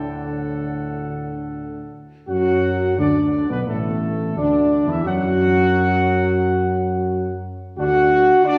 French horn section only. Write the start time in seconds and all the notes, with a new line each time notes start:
Already playing: A2
2.27 F#4
2.98 D4
3.49 B3
3.67 A3
4.37 D4
4.88 E4
5.03 F#4
7.78 F#4
8.45 D4